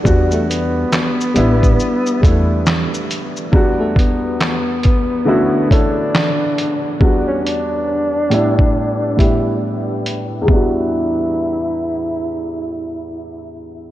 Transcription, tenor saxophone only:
X:1
M:4/4
L:1/16
Q:"Swing 16ths" 1/4=69
K:Edor
V:1 name="Tenor saxophone"
z A, B,8 A,2 z4 | z A, B,8 D6 | z C D8 E2 z4 | E12 z4 |]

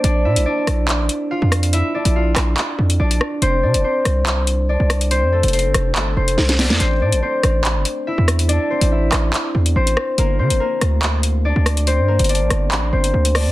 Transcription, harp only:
X:1
M:4/4
L:1/8
Q:1/4=142
K:Aphr
V:1 name="Harp"
[Dd] [Ee] [Dd]4 [Ff]2 | [Ee] [Dd] [Ff]4 [Dd]2 | [Cc] [Dd] [Cc]4 [Dd]2 | [Cc] [A,A] [Cc]2 [A,A] [Cc]2 [Dd] |
[Cc] [Dd] [Cc]4 [Ee]2 | [Dd] [Cc] [Ee]4 [Cc]2 | [B,B] [Cc] [B,B]4 [Dd]2 | [Cc] [B,B] [Dd]2 [B,B] [Cc]2 [Dd] |]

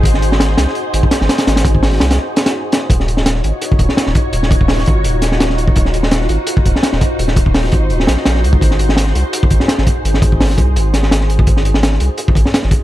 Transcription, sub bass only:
X:1
M:4/4
L:1/16
Q:"Swing 16ths" 1/4=168
K:Abmix
V:1 name="Sub bass" clef=bass
A,,,6 C,, z3 A,,, z2 A,,, z2 | A,,,6 C,,2 z8 | E,,,6 A,,, z3 E,,, z2 E,,, z2 | E,,,6 A,,,2 E,,,8 |
E,,,6 A,,, z3 E,,, z2 E,,, z2 | E,,,6 A,,,2 E,,,2 B,,, z B,,,2 D,,2 | A,,,6 C,, z3 A,,, z2 A,,, z2 | A,,,6 C,,2 A,,,8 |
A,,,6 C,, z3 A,,, z2 A,,, z2 |]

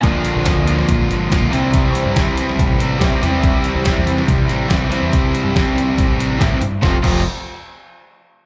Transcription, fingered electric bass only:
X:1
M:4/4
L:1/16
Q:1/4=142
K:F
V:1 name="Fingered electric bass" clef=bass
B,,,3 B,,, z D,,3 B,,2 G,,,2 z B,,, C,,2- | C,,3 G,, z C,,3 A,,,4 C, z E,,2 | C,,3 C,, z E,,3 C,2 A,,,2 z C,, z E,, | C,,2 z G,, z C,,3 A,,,4 A,,2 G,,2 |
F,,, z F,,,2 z12 |]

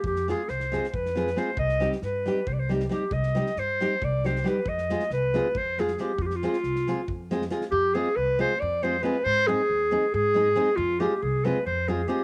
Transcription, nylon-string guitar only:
X:1
M:7/8
L:1/8
Q:1/4=137
K:none
V:1 name="Nylon-string guitar"
z [_A,CF_A] z [A,CFA] z [A,CFA] [A,CFA] | z [G,C_EG] z [G,CEG] z [G,CEG] [G,CEG] | z [G,C_EG] z [G,CEG] z [G,CEG] [G,CEG] | z [_A,CF_A] z [A,CFA] z [A,CFA] [A,CFA] |
z [_A,CF_A] z [A,CFA] z [A,CFA] [A,CFA] | z [_A,CF_A] z [A,CFA] z [A,CFA] [A,CFA] | z [_A,C_E_A] z [A,CEA] z [A,CEA] [A,CEA] | z [_A,CF_A] z [A,CFA] z [A,CFA] [A,CFA] |]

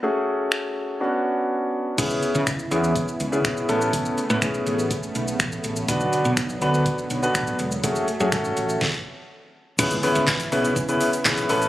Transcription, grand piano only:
X:1
M:4/4
L:1/16
Q:1/4=123
K:C#phr
V:1 name="Grand piano"
[A,CFG]8 [B,CDF]8 | [B,CEG]3 z3 [B,CEG]3 z2 [B,CEG]3 [B,CEA]2- | [B,CEA]2 z [B,CEB] [B,CEG]4 z8 | [B,DFB]3 z3 [B,DFB]3 z2 [B,DFB]3 z2 |
[A,CFG]2 z [A,CFG] [A,CFA]4 z8 | [B,CEGB] z [B,CEGB]2 z2 [B,CEGB]2 z [B,CEGB]2 z [B,CEGB]2 [B,CEAB]2 |]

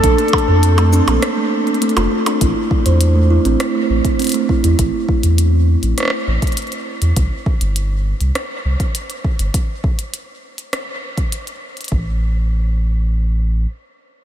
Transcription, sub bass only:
X:1
M:4/4
L:1/16
Q:1/4=101
K:Am
V:1 name="Sub bass" clef=bass
_B,,, z2 F,,4 B,,, z4 z F,,, z2 | A,,, z2 E,,4 A,,, z2 A,,, z4 E,, | A,,, z2 E,,4 A,,, z2 A,,, z4 E,, | C,, z2 G,,,4 C,, z2 C,, z4 G,,, |
z16 | A,,,12 z4 |]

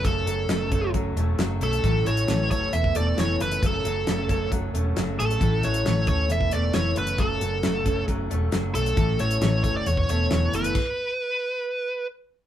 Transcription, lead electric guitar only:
X:1
M:4/4
L:1/16
Q:1/4=135
K:F#m
V:1 name="Lead electric guitar"
A8 z6 A2- | A2 c4 c2 e2 d2 c2 B2 | A8 z6 A2- | A2 c4 c2 e2 d2 c2 B2 |
A8 z6 A2- | A2 c4 c d c2 c4 B2- | B12 z4 |]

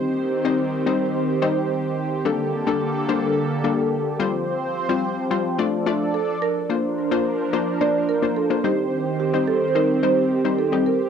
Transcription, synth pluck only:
X:1
M:4/4
L:1/16
Q:1/4=108
K:Cdor
V:1 name="Synth pluck"
[G,CEc]2 z [G,CEc]2 z [G,CEc]3 z [G,CEc]4- [G,CEc] z | [G,B,DA]2 z [G,B,DA]2 z [G,B,Dc]3 z [G,B,DA]4 [G,CFc]2- | [G,CFc]2 z [G,CFc]2 z [G,CFc]2 [A,DFd]2 [A,DFd]4- [A,DFd] z | [B,DFc]2 z [B,DFc]2 z [B,DFc]2 [B,DFc]2 z [B,DFc]2 [B,DFc] [G,CEc]2- |
[G,CEc]2 z [G,CEc]2 z [G,CEc]2 [G,CEc]2 z [G,CEc]2 [G,CEG]2 z |]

